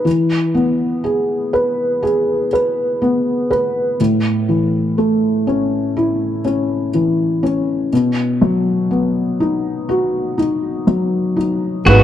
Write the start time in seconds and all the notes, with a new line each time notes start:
0.05 E3
0.54 B3
1.04 G#4
1.53 B4
2.03 G#4
2.53 B4
3.02 B3
3.50 B4
4.00 A2
4.49 E3
4.98 A3
5.47 C#4
5.97 E4
6.45 C#4
6.94 E3
7.43 C#4
7.93 B2
8.41 F#3
8.91 B3
9.40 D#4
9.89 F#4
10.38 D#4
10.87 F#3
11.36 D#4
11.85 G#1 D#3 G#3 B3 D#4 F#4 B4